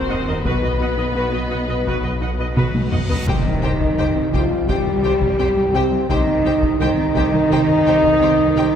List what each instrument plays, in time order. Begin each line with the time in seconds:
Already playing: detuned saw bass D#1, cello section C4, french horn section F#4 A#4, violin section C5
0.10 double bass section D#2, synth arpeggio sound A#3, viola section D#5 F#5
0.27 double bass section D#2, synth arpeggio sound D#4, viola section A#4 D#5
0.44 detuned saw bass B1, double bass section B1, cello section B3, synth arpeggio sound B3, viola section F#4 B4, violin section B4, french horn section D#5, taiko, reverse cymbal
0.62 double bass section B1, synth arpeggio sound F#4, viola section B4 D#5
0.80 double bass section B1, synth arpeggio sound F#4, viola section D#5 F#5
0.97 double bass section B1, synth arpeggio sound D#4, viola section B4 D#5
1.15 double bass section B1, synth arpeggio sound B3, viola section F#4 B4
1.33 double bass section B1, synth arpeggio sound F#4, viola section B4 D#5
1.50 double bass section B1, synth arpeggio sound F#4, viola section D#5 F#5
1.68 double bass section B1, synth arpeggio sound F#4, viola section B4 D#5
1.86 double bass section B1, synth arpeggio sound B3, viola section F#4 B4, taiko
2.03 double bass section B1, synth arpeggio sound F#4, viola section B4 D#5
2.21 double bass section B1, synth arpeggio sound D#4, viola section D#5 F#5
2.39 double bass section B1, synth arpeggio sound F#4, viola section B4 D#5
2.56 double bass section B1, synth arpeggio sound B3, viola section F#4 B4, taiko mid
2.75 taiko high
2.91 double bass section B1, synth arpeggio sound F#4, viola section D#5 F#5, taiko low-mid
3.09 double bass section B1, synth arpeggio sound B4, viola section B4 D#5, taiko low
3.27 double bass section C2, detuned saw bass C2, synth arpeggio sound C3, cello section D#3, french horn section D#4, viola section G4, violin section C5 G5, taiko, impact
3.45 synth arpeggio sound C4, taiko low-mid
3.62 double bass section C2, synth arpeggio sound D#3, viola section G4, violin section C5 G5
3.80 synth arpeggio sound C3, taiko
3.98 double bass section C2, synth arpeggio sound D#3, viola section G4, violin section C5 G5, taiko low-mid
4.16 synth arpeggio sound C4
4.33 double bass section C2, synth arpeggio sound C3, cello section F3, french horn section F4, viola section G4, violin section C5 G5, taiko
4.51 synth arpeggio sound G3
4.68 double bass section C2, synth arpeggio sound C3, cello section G3, viola section G4, french horn section G4, violin section C5 G5, taiko
4.86 synth arpeggio sound D#3, taiko low-mid
5.04 double bass section C2, synth arpeggio sound D#3, viola section G4, violin section C5 G5
5.21 synth arpeggio sound C3, taiko
5.39 double bass section C2, synth arpeggio sound C4, viola section G4, violin section C5 G5
5.57 synth arpeggio sound G3, taiko low-mid
5.74 double bass section C2, synth arpeggio sound C3, cello section C3, french horn section C4, viola section G4, violin section C5 G5
5.92 synth arpeggio sound G3
6.09 double bass section C2, detuned saw bass C2, synth arpeggio sound C3, cello section D#3, french horn section D#4, viola section G4, violin section C5 G5, taiko
6.27 synth arpeggio sound C4, taiko low-mid
6.44 double bass section C2, synth arpeggio sound D#3, viola section G4, violin section C5 G5
6.62 synth arpeggio sound C3, taiko
6.80 double bass section C2, synth arpeggio sound D#3, cello section D#3, french horn section D#4, viola section G4, violin section C5 G5, taiko low-mid
6.98 synth arpeggio sound C4
7.15 double bass section C2, synth arpeggio sound C3, viola section G4, violin section C5 G5, taiko
7.33 synth arpeggio sound G3
7.50 double bass section C2, synth arpeggio sound C3, viola section G4, violin section C5 G5, taiko
7.68 synth arpeggio sound D#3, taiko low-mid
7.86 double bass section C2, synth arpeggio sound D#3, viola section G4, violin section C5 G5
8.03 synth arpeggio sound C3, taiko
8.21 double bass section C2, synth arpeggio sound C4, viola section G4, violin section C5 G5
8.38 synth arpeggio sound G3, taiko low-mid
8.56 double bass section C2, synth arpeggio sound C3, viola section G4, violin section C5 G5